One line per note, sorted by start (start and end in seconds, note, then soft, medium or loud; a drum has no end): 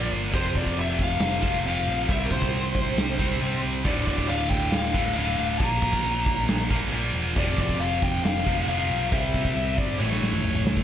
0.00 0.11 A#1 loud
0.00 0.31 A#2 medium
0.00 0.32 F3 medium
0.00 0.33 A#3 loud
0.11 0.32 G1 loud
0.32 0.55 F1 medium
0.32 1.41 F2 medium
0.32 1.42 C3 loud
0.32 1.40 F3 loud
0.32 0.57 C5 loud
0.32 kick loud
0.32 crash medium
0.55 0.75 F1 medium
0.55 0.79 D5 loud
0.55 kick medium
0.66 kick medium
0.76 0.98 F1 loud
0.76 1.01 E5 loud
0.76 crash medium
0.99 1.19 F1 loud
0.99 1.63 F5 loud
0.99 kick medium
1.20 1.42 F1 loud
1.20 snare loud
1.20 crash medium
1.41 1.64 F1 medium
1.41 1.64 F2 medium
1.41 1.64 C3 medium
1.41 1.63 F3 medium
1.41 kick medium
1.64 1.86 F1 loud
1.64 2.08 F2 medium
1.64 2.07 C3 medium
1.64 2.09 F3 medium
1.64 2.10 F5 loud
1.64 crash medium
1.87 2.08 A#1 medium
2.09 2.30 C2 loud
2.09 3.17 C3 medium
2.09 3.18 G3 loud
2.09 3.18 C4 loud
2.09 2.25 E5 loud
2.09 kick loud
2.09 crash medium
2.24 2.31 A#4 medium
2.31 2.52 C2 medium
2.31 3.59 C5 medium
2.31 kick medium
2.42 kick medium
2.53 2.74 C2 loud
2.53 crash medium
2.75 2.96 C2 medium
2.75 kick medium
2.97 3.18 C2 loud
2.97 snare loud
2.97 crash medium
3.19 3.40 C2 medium
3.19 3.39 C3 medium
3.19 3.40 G3 medium
3.19 3.40 C4 medium
3.19 kick medium
3.40 3.62 C2 medium
3.40 3.83 C3 medium
3.40 3.84 G3 medium
3.40 3.85 C4 medium
3.40 crash medium
3.64 3.87 C2 medium
3.84 4.06 D1 medium
3.84 4.93 D2 medium
3.84 4.94 A2 loud
3.84 4.93 D3 loud
3.84 4.06 D5 medium
3.84 kick loud
3.84 crash medium
4.07 4.28 D1 medium
4.07 4.28 D5 medium
4.07 kick medium
4.18 kick medium
4.28 4.50 D1 loud
4.28 4.51 F5 medium
4.28 crash medium
4.49 4.71 D1 medium
4.49 4.73 G5 loud
4.49 kick medium
4.70 4.94 D1 loud
4.70 5.14 F5 loud
4.70 snare loud
4.70 crash medium
4.94 5.15 D1 medium
4.94 5.15 D2 medium
4.94 5.16 A2 medium
4.94 5.15 D3 loud
4.94 kick medium
5.15 5.37 D1 loud
5.15 5.59 D2 medium
5.15 5.60 A2 medium
5.15 5.61 F5 loud
5.15 crash medium
5.19 5.60 D3 medium
5.38 5.60 D1 loud
5.58 5.81 A#1 medium
5.58 6.69 A#2 medium
5.58 6.43 A#5 loud
5.58 kick loud
5.58 crash medium
5.62 6.70 F3 loud
5.62 6.69 A#3 loud
5.82 6.03 A#1 medium
5.82 kick medium
5.93 kick medium
6.04 6.25 A#1 medium
6.04 crash medium
6.26 6.47 A#1 loud
6.26 kick loud
6.48 6.69 A#1 loud
6.48 snare loud
6.48 crash medium
6.70 6.91 A#1 medium
6.70 6.90 A#2 medium
6.70 6.92 F3 medium
6.70 6.91 A#3 loud
6.70 kick loud
6.91 7.13 A#1 loud
6.91 7.34 A#2 medium
6.91 7.35 F3 medium
6.91 7.36 A#3 loud
6.91 crash medium
7.14 7.35 E1 loud
7.35 7.57 F1 medium
7.35 8.44 F2 loud
7.35 8.45 C3 loud
7.35 8.44 F3 loud
7.35 7.58 D5 loud
7.35 kick loud
7.35 crash medium
7.58 7.78 F1 medium
7.58 7.81 D5 loud
7.58 kick medium
7.69 kick medium
7.79 8.00 F1 medium
7.79 8.03 F5 loud
7.79 crash medium
8.02 8.23 F1 loud
8.02 8.23 G5 loud
8.02 kick medium
8.23 8.45 F1 loud
8.23 8.67 F5 loud
8.23 snare loud
8.23 crash medium
8.45 8.67 F1 medium
8.45 8.66 F2 medium
8.45 8.67 C3 medium
8.45 8.66 F3 medium
8.45 kick medium
8.67 8.89 F1 loud
8.67 9.10 F2 medium
8.67 9.11 C3 medium
8.67 9.12 F3 loud
8.67 9.09 F5 loud
8.67 crash medium
8.90 9.11 B1 loud
9.12 9.33 C2 loud
9.12 9.99 C3 medium
9.12 10.00 G3 loud
9.12 10.00 C4 loud
9.12 9.80 E5 loud
9.12 kick loud
9.12 crash medium
9.34 9.55 C2 medium
9.34 kick medium
9.45 kick medium
9.55 9.77 C2 loud
9.55 crash medium
9.77 9.99 G1 medium
9.77 9.99 D5 medium
9.77 kick medium
9.99 10.21 A1 loud
9.99 10.83 A2 medium
9.99 10.83 E3 loud
9.99 10.83 A3 loud
9.99 10.62 C#5 medium
9.99 high tom medium
10.12 snare medium
10.22 10.43 A1 medium
10.22 snare medium
10.33 mid tom medium
10.43 10.65 A1 loud
10.43 mid tom medium
10.55 mid tom medium
10.65 10.83 C#2 medium
10.65 snare loud
10.77 kick loud